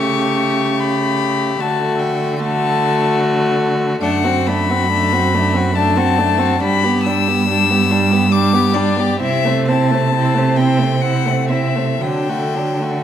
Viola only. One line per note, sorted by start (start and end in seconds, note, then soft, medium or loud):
0.00 1.56 A3 medium
1.61 2.39 A3 medium
2.42 4.00 A3 medium
4.02 4.26 A3 medium
4.24 4.49 C4 medium
4.47 4.72 A3 medium
4.70 4.91 C4 medium
4.92 5.14 A3 medium
5.13 5.36 C4 medium
5.34 5.55 A3 medium
5.54 5.74 C4 medium
5.75 5.98 A3 medium
5.97 6.20 C4 medium
6.18 6.40 A3 medium
6.38 6.60 C4 medium
6.62 6.86 G3 medium
6.85 7.08 B3 medium
7.07 7.30 G3 medium
7.28 7.48 B3 medium
7.49 7.72 G3 medium
7.70 7.92 B3 medium
7.91 8.14 G3 medium
8.13 8.31 B3 medium
8.32 8.54 G3 medium
8.53 8.74 B3 medium
8.73 8.98 G3 medium
8.96 9.19 B3 medium
9.19 9.46 C4 medium
9.44 9.70 A3 medium
9.68 9.92 C4 medium
9.91 10.13 A3 medium
10.14 10.36 C4 medium
10.35 10.59 A3 medium
10.57 10.80 C4 medium
10.79 11.00 A3 medium
11.01 11.27 C4 medium
11.25 11.51 A3 medium
11.49 11.77 C4 medium
11.76 12.00 A3 medium
12.00 12.30 F#3 medium
12.28 12.55 A3 medium
12.54 12.81 F#3 medium
12.80 13.04 A3 medium